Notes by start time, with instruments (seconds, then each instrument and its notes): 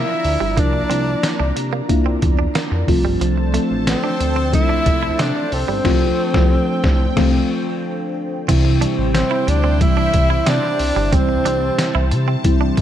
Already playing: fm electric piano F3 A#3 D4 F4, analog synth pad D4 A#4 D5 A#5, tenor saxophone E4, violin section E5
0.08 muted clean electric guitar stroke
0.24 analog synth bass D2, open hi-hat
0.40 analog synth bass G1, clean electric guitar G3
0.57 analog synth bass C2, fm electric piano F3 A#3 D4 E4, clean electric guitar A#3, tenor saxophone D4, violin section D5, kick, closed hi-hat
0.73 muted clean electric guitar stroke
0.90 analog synth bass C2, fm electric piano F3 A#3 D4 E4, clean electric guitar C4, closed hi-hat
1.23 snare, closed hi-hat, tambourine
1.40 analog synth bass C2, clean electric guitar D4
1.56 analog synth bass C3, muted clean electric guitar stroke, closed hi-hat
1.73 clean electric guitar A#3
1.88 fm electric piano A#3 D4 E4 F4, kick, closed hi-hat
2.06 clean electric guitar C4
2.22 analog synth bass E2, muted clean electric guitar stroke, kick, closed hi-hat
2.39 clean electric guitar D4
2.55 clean electric guitar A#3, snare, closed hi-hat, tambourine
2.72 analog synth bass F2, muted clean electric guitar stroke
2.87 analog synth bass C2, fm electric piano F3 A3 C4 F4, analog synth pad A4 C5 A5, kick, open hi-hat
3.05 analog synth bass G1, clean electric guitar G3
3.21 analog synth bass C2, clean electric guitar F3, closed hi-hat
3.38 muted clean electric guitar stroke
3.53 fm electric piano F3 A3 C4 F4, clean electric guitar A3, closed hi-hat
3.71 analog synth bass A1
3.87 tenor saxophone C4, violin section C5, snare, closed hi-hat, tambourine
4.04 clean electric guitar D4
4.20 analog synth bass D2, muted clean electric guitar stroke, closed hi-hat
4.36 clean electric guitar C4
4.52 fm electric piano F3 A3 C4 A4, tenor saxophone E4, violin section E5, kick, closed hi-hat
4.69 clean electric guitar D4
4.86 analog synth bass C2, muted clean electric guitar stroke, kick, closed hi-hat
5.03 clean electric guitar E4
5.19 analog synth bass C3, clean electric guitar C4, tenor saxophone D4, violin section D5, snare, closed hi-hat, tambourine
5.35 muted clean electric guitar stroke
5.52 analog synth bass C2, tenor saxophone C4, violin section C5, analog synth pad G5, open hi-hat
5.68 analog synth bass G1, clean electric guitar G3
5.84 analog synth bass C2, fm electric piano F3 A3 C4 F4, kick, snare, crash
6.34 analog synth bass C2, fm electric piano F3 A3 C4 F4, kick, snare
6.84 analog synth bass C2, kick, snare
7.16 analog synth bass C2, fm electric piano F3 A3 C4 F4 F5, kick, snare, crash
8.48 analog synth bass C2, fm electric piano C3 E3 G3 C4 E4, clean electric guitar C4, analog synth pad E4 G4 C5 G5, kick, closed hi-hat, crash
8.65 muted clean electric guitar stroke
8.81 fm electric piano C3 E3 G3 C4 E4, clean electric guitar D4, closed hi-hat
8.98 analog synth bass A1
9.14 tenor saxophone C4, violin section C5, snare, closed hi-hat, tambourine
9.31 clean electric guitar E4
9.47 analog synth bass D2, tenor saxophone D4, violin section D5, muted clean electric guitar stroke, closed hi-hat
9.64 clean electric guitar C4
9.81 fm electric piano C3 E3 G3 C4 E4, tenor saxophone E4, violin section E5, kick, closed hi-hat
9.97 clean electric guitar D4
10.13 analog synth bass C2, muted clean electric guitar stroke, kick, closed hi-hat
10.30 clean electric guitar E4
10.46 analog synth bass C3, clean electric guitar C4, tenor saxophone D4, violin section D5, snare, closed hi-hat, tambourine
10.63 muted clean electric guitar stroke
10.79 analog synth bass C2, open hi-hat
10.96 analog synth bass G1, clean electric guitar G3
11.12 analog synth bass C2, fm electric piano C3 E3 G3 C4 E4, clean electric guitar C4, tenor saxophone C4, violin section C5, analog synth pad A5, kick, closed hi-hat
11.29 muted clean electric guitar stroke
11.45 analog synth bass C2, fm electric piano C3 E3 G3 C4 G4, clean electric guitar D4, closed hi-hat
11.78 snare, closed hi-hat, tambourine
11.95 analog synth bass C2, clean electric guitar E4
12.11 analog synth bass C3, muted clean electric guitar stroke, closed hi-hat
12.28 clean electric guitar C4
12.44 fm electric piano C3 E3 G3 C4 E4, kick, closed hi-hat
12.61 clean electric guitar D4
12.77 analog synth bass C2, muted clean electric guitar stroke, kick, closed hi-hat